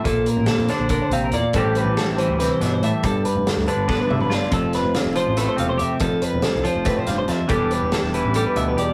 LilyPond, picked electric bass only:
\new Staff \with { instrumentName = "Picked electric bass" } { \clef bass \time 7/8 \key f \lydian \tempo 4 = 141 bes,,8 r16 a,,16 r16 f,16 r16 bes,,8 r16 bes,,8 e,16 r16 | a,,8. a,,16 r16 a,,8 d,8 r16 g,,8 a,16 r16 | g,,8 r16 f,,16 r16 d,16 r16 g,,8 r16 g,,8 g,,16 r16 | f,,8. f,,16 r16 f,,8 a,,8 r16 e,,8 f,16 r16 |
f,,8 r16 e,,16 r16 c,16 r16 f,,8 r16 f,,8 f,16 r16 | e,,8. e,,16 r16 e,,8 a,,8 r16 d,8 e,16 r16 | }